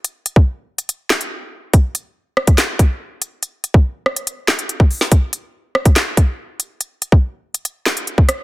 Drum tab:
HH |x-x----xx--x----|x-x----xx-x---x-|x-x----xx--xx-o-|x-x----xx-x---x-|
CP |----------x-----|--------x-------|----------x-----|--------x-------|
SD |----------o-----|------r-o-------|------r---o----o|------r-o-------|
BD |---o------------|o------o--o-----|---o---------o--|o------o--o-----|

HH |x-x----xx--xx-x-|
CP |----------x-----|
SD |----------o---r-|
BD |---o---------o--|